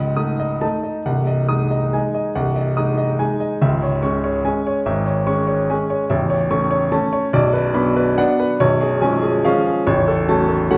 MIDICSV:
0, 0, Header, 1, 2, 480
1, 0, Start_track
1, 0, Key_signature, 4, "minor"
1, 0, Tempo, 441176
1, 1152, Time_signature, 3, 2, 24, 8
1, 2110, Tempo, 417537
1, 6430, Tempo, 409277
1, 6907, Key_signature, 3, "minor"
1, 8830, Tempo, 423430
1, 12268, End_track
2, 0, Start_track
2, 0, Title_t, "Grand piano"
2, 0, Program_c, 0, 0
2, 0, Control_c, 0, 64, 127
2, 0, Note_on_c, 0, 25, 65
2, 0, Note_on_c, 0, 37, 69
2, 0, Note_on_c, 0, 75, 58
2, 0, Note_on_c, 0, 78, 67
2, 168, Note_off_c, 0, 25, 0
2, 169, Note_off_c, 0, 37, 0
2, 180, Note_on_c, 0, 87, 67
2, 181, Note_on_c, 0, 57, 52
2, 184, Note_on_c, 0, 63, 52
2, 334, Note_off_c, 0, 75, 0
2, 430, Note_on_c, 0, 75, 65
2, 575, Note_off_c, 0, 87, 0
2, 630, Note_off_c, 0, 57, 0
2, 631, Note_off_c, 0, 63, 0
2, 667, Note_on_c, 0, 81, 68
2, 668, Note_on_c, 0, 57, 56
2, 671, Note_on_c, 0, 63, 58
2, 693, Control_c, 0, 64, 0
2, 698, Note_off_c, 0, 78, 0
2, 822, Note_off_c, 0, 75, 0
2, 907, Note_on_c, 0, 75, 55
2, 1055, Note_off_c, 0, 81, 0
2, 1104, Note_off_c, 0, 57, 0
2, 1106, Note_off_c, 0, 63, 0
2, 1147, Note_off_c, 0, 75, 0
2, 1150, Note_on_c, 0, 24, 66
2, 1151, Note_on_c, 0, 36, 68
2, 1152, Note_on_c, 0, 78, 64
2, 1333, Control_c, 0, 64, 127
2, 1383, Note_on_c, 0, 75, 59
2, 1526, Note_off_c, 0, 78, 0
2, 1607, Note_off_c, 0, 24, 0
2, 1608, Note_off_c, 0, 36, 0
2, 1614, Note_on_c, 0, 56, 54
2, 1616, Note_on_c, 0, 87, 67
2, 1621, Note_on_c, 0, 63, 55
2, 1767, Note_off_c, 0, 75, 0
2, 1859, Note_on_c, 0, 75, 59
2, 2009, Note_off_c, 0, 87, 0
2, 2062, Note_off_c, 0, 56, 0
2, 2065, Note_off_c, 0, 63, 0
2, 2102, Note_on_c, 0, 56, 57
2, 2104, Note_on_c, 0, 80, 67
2, 2107, Note_on_c, 0, 63, 56
2, 2126, Control_c, 0, 64, 0
2, 2256, Note_off_c, 0, 75, 0
2, 2347, Note_on_c, 0, 75, 59
2, 2496, Note_off_c, 0, 80, 0
2, 2541, Note_off_c, 0, 56, 0
2, 2544, Note_off_c, 0, 63, 0
2, 2586, Note_on_c, 0, 24, 64
2, 2587, Note_on_c, 0, 78, 68
2, 2589, Note_on_c, 0, 36, 76
2, 2726, Note_off_c, 0, 75, 0
2, 2786, Control_c, 0, 64, 127
2, 2823, Note_on_c, 0, 75, 57
2, 2966, Note_off_c, 0, 78, 0
2, 3048, Note_off_c, 0, 24, 0
2, 3050, Note_off_c, 0, 36, 0
2, 3063, Note_on_c, 0, 56, 57
2, 3063, Note_on_c, 0, 87, 67
2, 3070, Note_on_c, 0, 63, 58
2, 3210, Note_off_c, 0, 75, 0
2, 3301, Note_on_c, 0, 75, 65
2, 3456, Note_off_c, 0, 87, 0
2, 3508, Note_off_c, 0, 56, 0
2, 3512, Note_off_c, 0, 63, 0
2, 3549, Note_on_c, 0, 56, 63
2, 3551, Note_on_c, 0, 80, 74
2, 3552, Note_on_c, 0, 63, 64
2, 3569, Control_c, 0, 64, 0
2, 3699, Note_off_c, 0, 75, 0
2, 3792, Note_on_c, 0, 75, 59
2, 3941, Note_off_c, 0, 80, 0
2, 3988, Note_off_c, 0, 56, 0
2, 3989, Note_off_c, 0, 63, 0
2, 4033, Note_off_c, 0, 75, 0
2, 4037, Note_on_c, 0, 25, 77
2, 4037, Note_on_c, 0, 37, 79
2, 4038, Note_on_c, 0, 76, 77
2, 4237, Control_c, 0, 64, 127
2, 4276, Note_on_c, 0, 73, 63
2, 4416, Note_off_c, 0, 76, 0
2, 4498, Note_off_c, 0, 25, 0
2, 4498, Note_off_c, 0, 37, 0
2, 4509, Note_on_c, 0, 85, 69
2, 4511, Note_on_c, 0, 56, 60
2, 4518, Note_on_c, 0, 61, 61
2, 4659, Note_off_c, 0, 73, 0
2, 4754, Note_on_c, 0, 73, 66
2, 4898, Note_off_c, 0, 85, 0
2, 4951, Note_off_c, 0, 56, 0
2, 4954, Note_off_c, 0, 61, 0
2, 4992, Note_on_c, 0, 56, 60
2, 4993, Note_on_c, 0, 80, 74
2, 4995, Note_on_c, 0, 61, 65
2, 5007, Control_c, 0, 64, 0
2, 5144, Note_off_c, 0, 73, 0
2, 5245, Note_on_c, 0, 73, 66
2, 5380, Note_off_c, 0, 80, 0
2, 5425, Note_off_c, 0, 56, 0
2, 5427, Note_off_c, 0, 61, 0
2, 5465, Note_on_c, 0, 32, 75
2, 5467, Note_on_c, 0, 44, 79
2, 5469, Note_on_c, 0, 76, 73
2, 5614, Note_off_c, 0, 73, 0
2, 5672, Control_c, 0, 64, 127
2, 5700, Note_on_c, 0, 73, 64
2, 5842, Note_off_c, 0, 76, 0
2, 5921, Note_off_c, 0, 32, 0
2, 5922, Note_off_c, 0, 44, 0
2, 5936, Note_on_c, 0, 56, 65
2, 5937, Note_on_c, 0, 85, 75
2, 5938, Note_on_c, 0, 61, 64
2, 6083, Note_off_c, 0, 73, 0
2, 6170, Note_on_c, 0, 73, 69
2, 6328, Note_off_c, 0, 85, 0
2, 6381, Note_off_c, 0, 56, 0
2, 6382, Note_off_c, 0, 61, 0
2, 6432, Note_on_c, 0, 80, 73
2, 6436, Note_on_c, 0, 56, 68
2, 6438, Note_on_c, 0, 61, 69
2, 6445, Control_c, 0, 64, 0
2, 6571, Note_off_c, 0, 73, 0
2, 6669, Note_on_c, 0, 73, 65
2, 6817, Note_off_c, 0, 80, 0
2, 6865, Note_off_c, 0, 56, 0
2, 6865, Note_off_c, 0, 61, 0
2, 6899, Note_on_c, 0, 76, 74
2, 6902, Note_on_c, 0, 21, 79
2, 6905, Note_on_c, 0, 33, 85
2, 6906, Note_off_c, 0, 73, 0
2, 7136, Note_on_c, 0, 73, 70
2, 7138, Control_c, 0, 64, 127
2, 7279, Note_off_c, 0, 76, 0
2, 7363, Note_off_c, 0, 21, 0
2, 7364, Note_off_c, 0, 33, 0
2, 7378, Note_on_c, 0, 57, 64
2, 7380, Note_on_c, 0, 85, 80
2, 7384, Note_on_c, 0, 61, 64
2, 7522, Note_off_c, 0, 73, 0
2, 7613, Note_on_c, 0, 73, 72
2, 7765, Note_off_c, 0, 85, 0
2, 7815, Note_off_c, 0, 57, 0
2, 7818, Note_off_c, 0, 61, 0
2, 7862, Note_on_c, 0, 57, 70
2, 7865, Note_on_c, 0, 61, 76
2, 7865, Note_on_c, 0, 81, 76
2, 7874, Control_c, 0, 64, 0
2, 8005, Note_off_c, 0, 73, 0
2, 8107, Note_on_c, 0, 73, 77
2, 8249, Note_off_c, 0, 81, 0
2, 8295, Note_off_c, 0, 57, 0
2, 8296, Note_off_c, 0, 61, 0
2, 8343, Note_off_c, 0, 73, 0
2, 8347, Note_on_c, 0, 74, 86
2, 8349, Note_on_c, 0, 35, 92
2, 8350, Note_on_c, 0, 23, 80
2, 8566, Control_c, 0, 64, 127
2, 8585, Note_on_c, 0, 71, 68
2, 8731, Note_off_c, 0, 74, 0
2, 8818, Note_off_c, 0, 35, 0
2, 8819, Note_off_c, 0, 23, 0
2, 8832, Note_on_c, 0, 54, 67
2, 8832, Note_on_c, 0, 83, 80
2, 8835, Note_on_c, 0, 59, 66
2, 8840, Note_on_c, 0, 62, 72
2, 8979, Note_off_c, 0, 71, 0
2, 9081, Note_on_c, 0, 71, 72
2, 9224, Note_off_c, 0, 83, 0
2, 9276, Note_off_c, 0, 54, 0
2, 9278, Note_off_c, 0, 59, 0
2, 9280, Note_off_c, 0, 62, 0
2, 9323, Note_on_c, 0, 78, 87
2, 9325, Note_on_c, 0, 54, 67
2, 9329, Note_on_c, 0, 59, 74
2, 9333, Note_on_c, 0, 62, 82
2, 9335, Control_c, 0, 64, 0
2, 9469, Note_off_c, 0, 71, 0
2, 9570, Note_on_c, 0, 71, 72
2, 9708, Note_off_c, 0, 78, 0
2, 9757, Note_off_c, 0, 54, 0
2, 9759, Note_off_c, 0, 59, 0
2, 9762, Note_off_c, 0, 62, 0
2, 9803, Note_on_c, 0, 73, 89
2, 9804, Note_off_c, 0, 71, 0
2, 9804, Note_on_c, 0, 23, 82
2, 9805, Note_on_c, 0, 35, 87
2, 10014, Control_c, 0, 64, 127
2, 10034, Note_on_c, 0, 68, 73
2, 10178, Note_off_c, 0, 73, 0
2, 10260, Note_off_c, 0, 23, 0
2, 10261, Note_off_c, 0, 35, 0
2, 10270, Note_on_c, 0, 53, 65
2, 10271, Note_on_c, 0, 80, 83
2, 10272, Note_on_c, 0, 56, 66
2, 10278, Note_on_c, 0, 61, 76
2, 10417, Note_off_c, 0, 68, 0
2, 10510, Note_on_c, 0, 68, 71
2, 10662, Note_off_c, 0, 80, 0
2, 10716, Note_off_c, 0, 53, 0
2, 10717, Note_off_c, 0, 56, 0
2, 10720, Note_off_c, 0, 61, 0
2, 10761, Note_on_c, 0, 53, 77
2, 10761, Note_on_c, 0, 77, 84
2, 10765, Note_on_c, 0, 56, 70
2, 10771, Note_on_c, 0, 61, 84
2, 10779, Control_c, 0, 64, 0
2, 10908, Note_off_c, 0, 68, 0
2, 11004, Note_on_c, 0, 68, 70
2, 11148, Note_off_c, 0, 77, 0
2, 11195, Note_off_c, 0, 53, 0
2, 11197, Note_off_c, 0, 56, 0
2, 11200, Note_off_c, 0, 61, 0
2, 11237, Note_on_c, 0, 73, 87
2, 11238, Note_on_c, 0, 33, 91
2, 11239, Note_off_c, 0, 68, 0
2, 11241, Note_on_c, 0, 21, 78
2, 11475, Control_c, 0, 64, 127
2, 11476, Note_on_c, 0, 69, 78
2, 11611, Note_off_c, 0, 73, 0
2, 11692, Note_off_c, 0, 33, 0
2, 11693, Note_off_c, 0, 21, 0
2, 11713, Note_on_c, 0, 54, 70
2, 11715, Note_on_c, 0, 81, 81
2, 11718, Note_on_c, 0, 57, 70
2, 11723, Note_on_c, 0, 61, 76
2, 11853, Note_off_c, 0, 69, 0
2, 11940, Note_on_c, 0, 69, 73
2, 12094, Note_off_c, 0, 81, 0
2, 12145, Note_off_c, 0, 54, 0
2, 12148, Note_off_c, 0, 57, 0
2, 12150, Note_off_c, 0, 61, 0
2, 12189, Note_on_c, 0, 78, 80
2, 12190, Note_on_c, 0, 54, 70
2, 12197, Note_on_c, 0, 57, 72
2, 12198, Note_on_c, 0, 61, 74
2, 12202, Control_c, 0, 64, 0
2, 12268, Note_off_c, 0, 54, 0
2, 12268, Note_off_c, 0, 57, 0
2, 12268, Note_off_c, 0, 61, 0
2, 12268, Note_off_c, 0, 69, 0
2, 12268, Note_off_c, 0, 78, 0
2, 12268, End_track
0, 0, End_of_file